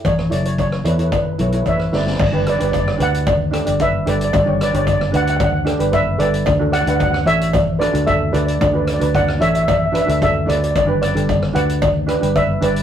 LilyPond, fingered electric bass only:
\new Staff \with { instrumentName = "Fingered electric bass" } { \clef bass \time 4/4 \key g \lydian \tempo 4 = 112 a,,8 fis,,4 e,8 r8 b,,8 a,,8 g,,8 | g,,8. g,,8. d,4~ d,16 g,,8. g,,8 | g,,8. g,,8. d,4~ d,16 g,,8. g,,8 | d,8. d,8. a,,4~ a,,16 d,8. d,8 |
d,8. d,8. a,,4~ a,,16 d,8. d,8 | g,,8. g,,8. d,4~ d,16 g,,8. g,,8 | }